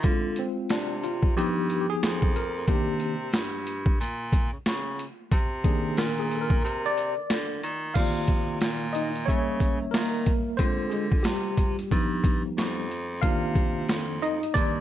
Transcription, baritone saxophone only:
0.04 0.42 D3 loud
0.70 1.33 C3 medium
1.37 1.86 G2 loud
1.89 1.94 F2 soft
2.03 2.65 F2 medium
2.68 3.31 C3 loud
3.34 3.97 G2 medium
4.00 4.50 A#2 medium
4.53 4.58 C#3 soft
4.67 5.04 C#3 medium
5.32 5.94 C3 loud
5.98 6.60 A#2 loud
6.64 7.14 C3 loud
7.17 7.22 D3 soft
7.31 7.61 D3 medium
7.63 7.94 D#3 medium
7.96 8.58 C3 loud
8.61 9.24 A#2 medium
9.28 9.78 C#3 loud
9.81 9.86 D#3 soft
9.94 10.32 D#3 medium
10.59 11.22 D3 medium
11.25 11.75 C3 medium
11.79 11.84 G2 soft
11.92 12.42 G2 loud
12.45 12.50 F2 soft
12.57 13.20 F2 loud
13.23 13.86 C3 loud
13.89 14.39 F2 medium
14.42 14.47 G2 soft
14.56 14.80 G2 medium

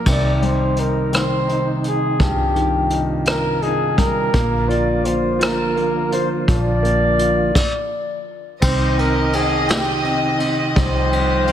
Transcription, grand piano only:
0.07 2.17 C3 soft
0.42 1.81 G3 soft
0.77 1.46 D#4 soft
1.12 2.51 D#3 soft
1.48 2.87 D#4 soft
2.20 4.30 G2 medium
2.55 3.94 D#3 soft
2.90 3.61 D#4 soft
3.63 4.32 D#4 soft
3.98 4.33 G3 soft
4.34 5.03 A#3 medium
4.69 5.38 F4 medium
5.04 5.75 A#3 soft
5.39 6.11 F4 medium
5.76 6.81 A#3 medium
6.12 7.17 F4 medium
6.49 7.53 F3 medium
6.83 7.53 A#3 medium
7.18 7.54 F4 soft
8.62 8.96 C4 medium
8.97 9.32 C4 medium
9.34 9.66 C4 soft
9.68 10.02 C4 medium
10.04 10.37 C4 medium
10.39 11.09 C4 medium
10.76 11.52 G3 medium
11.11 11.45 C4 medium
11.47 11.52 C4 soft

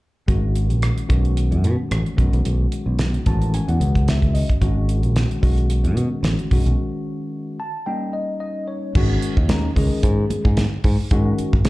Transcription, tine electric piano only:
0.28 1.07 D#3 medium
0.28 1.08 G#3 medium
0.28 1.07 C#4 medium
0.28 1.08 F#4 medium
1.08 2.15 D#3 medium
1.08 2.15 G#3 soft
1.08 2.15 C#4 soft
1.08 2.15 F#4 medium
2.16 3.23 D#3 medium
2.16 3.24 G#3 soft
2.16 3.24 C#4 soft
2.16 3.24 F#4 medium
3.26 4.59 D#3 medium
3.26 4.59 G#3 medium
3.26 4.60 C#4 medium
3.26 4.60 F#4 medium
3.26 3.52 A5 medium
3.54 3.68 G#5 medium
3.69 4.05 F#5 medium
4.08 4.33 E5 medium
4.34 4.60 D#5 medium
4.61 5.41 D#3 medium
4.61 5.41 G#3 medium
4.61 5.41 C#4 medium
4.61 5.42 F#4 medium
5.42 6.49 D#3 medium
5.42 6.49 G#3 medium
5.42 6.49 C#4 medium
5.42 6.49 F#4 medium
6.51 7.58 D#3 medium
6.51 7.58 G#3 medium
6.51 7.58 C#4 medium
6.51 7.58 F#4 medium
7.60 7.85 A5 medium
7.86 8.93 G3 medium
7.86 8.93 A#3 medium
7.86 8.93 C#4 medium
7.86 8.93 D#4 medium
7.86 8.12 G5 medium
8.13 8.39 D#5 medium
8.40 8.66 D#5 medium
8.68 8.93 C#5 medium
8.95 9.36 D#3 medium
8.95 9.37 G#3 medium
8.95 9.37 C#4 medium
8.95 9.37 F#4 medium
9.49 9.70 D#3 medium
9.49 9.70 G#3 medium
9.49 9.70 C#4 medium
9.49 9.70 D#4 medium
9.77 10.56 D#3 medium
9.77 10.56 G#3 medium
9.77 10.56 C#4 medium
9.77 10.57 G#4 medium
11.12 11.52 D#3 medium
11.12 11.53 G#3 medium
11.12 11.53 C#4 medium
11.12 11.53 F#4 medium
11.65 11.69 D#3 medium
11.65 11.69 G#3 medium
11.65 11.69 C#4 medium
11.65 11.69 G#4 medium

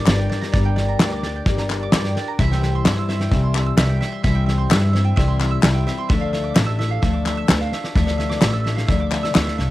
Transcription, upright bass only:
0.07 0.27 G1 loud
0.54 0.94 G1 loud
1.00 1.40 D2 loud
1.46 1.86 G1 medium
1.93 2.13 G2 loud
2.39 2.79 C2 loud
2.86 3.25 G2 loud
3.31 3.71 C2 loud
3.77 3.97 C2 loud
4.24 4.64 C2 loud
4.70 5.10 G2 loud
5.18 5.57 C2 medium
5.63 5.83 C2 loud
6.10 6.50 D2 loud
6.56 6.96 A1 loud
7.03 7.43 D2 medium
7.49 7.69 D2 loud
7.96 8.36 D2 loud
8.41 8.82 A1 loud
8.89 9.29 D2 loud
9.35 9.56 D2 loud
9.59 9.71 C2 medium

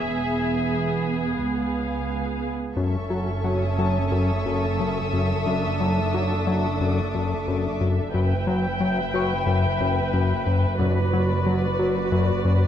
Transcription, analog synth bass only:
2.77 2.97 F#2 medium
3.10 3.31 F#3 soft
3.44 3.64 F#3 soft
3.79 3.99 F#3 soft
4.12 4.32 F#2 medium
4.46 4.66 F#2 soft
4.80 5.00 F#2 medium
5.13 5.33 F#2 soft
5.47 5.67 F#2 medium
5.80 6.00 F#3 soft
6.14 6.34 F#3 medium
6.47 6.67 F#3 soft
6.81 7.01 F#2 medium
7.15 7.34 F#2 soft
7.48 7.68 F#2 medium
7.81 8.01 F#2 soft
8.14 8.34 F#2 medium
8.47 8.67 F#3 soft
8.81 9.01 F#3 medium
9.14 9.34 F#3 soft
9.47 9.67 F#2 medium
9.81 10.00 F#2 medium
10.13 10.33 F#2 medium
10.46 10.66 F#2 medium
10.79 10.99 F#2 medium
11.13 11.33 F#3 soft
11.46 11.66 F#3 medium
11.79 11.99 F#3 soft
12.12 12.32 F#2 medium
12.45 12.65 F#2 medium

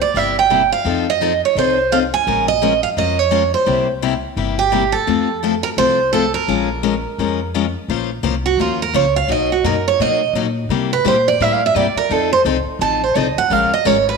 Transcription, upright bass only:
0.14 0.71 G1 medium
0.85 1.41 F2 medium
1.55 2.12 C2 medium
2.27 2.83 A#1 medium
2.97 3.53 F2 medium
3.67 4.23 C2 medium
4.37 4.93 G1 medium
5.07 5.63 F2 medium
5.77 6.33 C2 medium
6.48 7.04 A#1 medium
7.18 7.74 F2 medium
7.88 8.22 A#1 medium
8.23 8.57 C2 medium
8.57 8.92 D#2 medium
8.93 9.27 C#2 medium
9.28 9.62 B1 medium
9.64 9.98 F#2 medium
9.99 10.33 B2 medium
10.33 10.68 A#2 medium
10.69 11.03 C3 medium
11.05 11.39 A#2 medium
11.40 11.74 A2 medium
11.75 11.94 G2 medium
11.96 muted upright bass stroke soft
12.10 12.44 F2 medium
12.45 12.64 C2 medium
12.65 muted upright bass stroke soft
12.79 13.14 A1 medium
13.15 13.35 C2 medium
13.36 muted upright bass stroke soft
13.50 13.70 A#1 medium
13.71 muted upright bass stroke soft
13.85 14.17 G#1 medium

